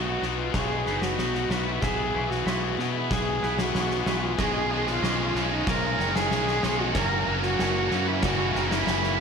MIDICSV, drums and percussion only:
0, 0, Header, 1, 2, 480
1, 0, Start_track
1, 0, Key_signature, 5, "major"
1, 0, Tempo, 640342
1, 1371, Time_signature, 4, 2, 24, 8
1, 6897, End_track
2, 0, Start_track
2, 0, Title_t, "Drums"
2, 169, Note_on_c, 9, 38, 33
2, 244, Note_off_c, 9, 38, 0
2, 405, Note_on_c, 9, 38, 100
2, 406, Note_on_c, 9, 36, 99
2, 480, Note_off_c, 9, 38, 0
2, 481, Note_off_c, 9, 36, 0
2, 647, Note_on_c, 9, 38, 32
2, 722, Note_off_c, 9, 38, 0
2, 765, Note_on_c, 9, 38, 80
2, 840, Note_off_c, 9, 38, 0
2, 889, Note_on_c, 9, 38, 74
2, 963, Note_off_c, 9, 38, 0
2, 1009, Note_on_c, 9, 38, 31
2, 1084, Note_off_c, 9, 38, 0
2, 1128, Note_on_c, 9, 38, 83
2, 1203, Note_off_c, 9, 38, 0
2, 1368, Note_on_c, 9, 36, 97
2, 1371, Note_on_c, 9, 38, 94
2, 1443, Note_off_c, 9, 36, 0
2, 1446, Note_off_c, 9, 38, 0
2, 1734, Note_on_c, 9, 38, 33
2, 1809, Note_off_c, 9, 38, 0
2, 1851, Note_on_c, 9, 38, 81
2, 1926, Note_off_c, 9, 38, 0
2, 2095, Note_on_c, 9, 38, 32
2, 2170, Note_off_c, 9, 38, 0
2, 2330, Note_on_c, 9, 36, 100
2, 2336, Note_on_c, 9, 38, 100
2, 2405, Note_off_c, 9, 36, 0
2, 2410, Note_off_c, 9, 38, 0
2, 2570, Note_on_c, 9, 38, 34
2, 2645, Note_off_c, 9, 38, 0
2, 2687, Note_on_c, 9, 38, 88
2, 2762, Note_off_c, 9, 38, 0
2, 2810, Note_on_c, 9, 38, 80
2, 2885, Note_off_c, 9, 38, 0
2, 2930, Note_on_c, 9, 38, 33
2, 3005, Note_off_c, 9, 38, 0
2, 3047, Note_on_c, 9, 38, 87
2, 3122, Note_off_c, 9, 38, 0
2, 3287, Note_on_c, 9, 38, 98
2, 3288, Note_on_c, 9, 36, 100
2, 3362, Note_off_c, 9, 38, 0
2, 3363, Note_off_c, 9, 36, 0
2, 3652, Note_on_c, 9, 38, 33
2, 3727, Note_off_c, 9, 38, 0
2, 3775, Note_on_c, 9, 38, 88
2, 3850, Note_off_c, 9, 38, 0
2, 4014, Note_on_c, 9, 38, 36
2, 4089, Note_off_c, 9, 38, 0
2, 4251, Note_on_c, 9, 36, 118
2, 4255, Note_on_c, 9, 38, 107
2, 4326, Note_off_c, 9, 36, 0
2, 4330, Note_off_c, 9, 38, 0
2, 4497, Note_on_c, 9, 38, 34
2, 4572, Note_off_c, 9, 38, 0
2, 4615, Note_on_c, 9, 38, 91
2, 4690, Note_off_c, 9, 38, 0
2, 4733, Note_on_c, 9, 38, 77
2, 4807, Note_off_c, 9, 38, 0
2, 4856, Note_on_c, 9, 38, 31
2, 4931, Note_off_c, 9, 38, 0
2, 4971, Note_on_c, 9, 38, 86
2, 5046, Note_off_c, 9, 38, 0
2, 5209, Note_on_c, 9, 38, 112
2, 5210, Note_on_c, 9, 36, 109
2, 5284, Note_off_c, 9, 38, 0
2, 5285, Note_off_c, 9, 36, 0
2, 5567, Note_on_c, 9, 38, 36
2, 5642, Note_off_c, 9, 38, 0
2, 5692, Note_on_c, 9, 38, 82
2, 5767, Note_off_c, 9, 38, 0
2, 5930, Note_on_c, 9, 38, 37
2, 6005, Note_off_c, 9, 38, 0
2, 6167, Note_on_c, 9, 38, 121
2, 6170, Note_on_c, 9, 36, 113
2, 6242, Note_off_c, 9, 38, 0
2, 6245, Note_off_c, 9, 36, 0
2, 6411, Note_on_c, 9, 38, 39
2, 6486, Note_off_c, 9, 38, 0
2, 6532, Note_on_c, 9, 38, 86
2, 6607, Note_off_c, 9, 38, 0
2, 6650, Note_on_c, 9, 38, 84
2, 6725, Note_off_c, 9, 38, 0
2, 6772, Note_on_c, 9, 38, 34
2, 6847, Note_off_c, 9, 38, 0
2, 6897, End_track
0, 0, End_of_file